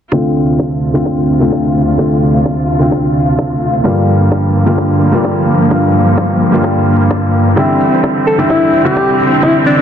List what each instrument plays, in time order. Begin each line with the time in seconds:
0.12 string section D2 C3 F4, grand piano D3 A3 C4 F4, kick
0.59 kick
0.94 grand piano D3 A3 C4 F4
1.06 kick
1.40 grand piano D3 A3 C4 F4
1.52 kick
1.98 grand piano D3 A3 C4 F4, kick
2.46 kick
2.79 grand piano D3 A3 C4 F4
2.92 kick
3.39 kick
3.84 grand piano G2 D3 G3 A#3 F4, string section G2 F3 A#3, kick
4.32 kick
4.66 grand piano G2 D3 G3 A#3 F4
4.78 kick
5.12 grand piano G2 D3 G3 A#3 F4
5.25 kick
5.70 grand piano G2 D3 G3 A#3 F4, kick
6.18 kick
6.51 grand piano G2 D3 G3 A#3 F4
6.64 kick
7.11 kick
7.56 grand piano D3 G3 C4 E4, string section D3 E3 C4, kick
7.80 open hi-hat
8.04 kick
8.27 alto saxophone A4, open hi-hat
8.38 grand piano D3 G3 C4 E4
8.50 alto saxophone E4, kick
8.73 open hi-hat
8.84 grand piano D3 G3 C4 E4, alto saxophone G4
8.97 kick
9.20 open hi-hat
9.42 grand piano D3 G3 C4 E4, alto saxophone E4, kick
9.66 alto saxophone D4, open hi-hat
9.78 alto saxophone D4